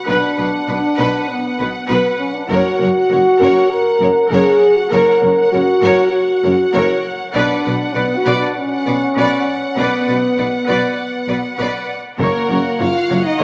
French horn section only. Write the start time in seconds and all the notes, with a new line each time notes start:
0.07 D4
1.28 B3
2.19 C#4
2.34 D4
2.48 F#4
3.71 A#4
4.30 G#4
4.77 F#4
4.90 A#4
5.52 F#4
6.12 F#4
7.36 D4
7.94 B3
8.17 F#4
8.35 D4
8.55 C#4
9.77 B3
12.20 A#3
12.81 F4
13.26 D#4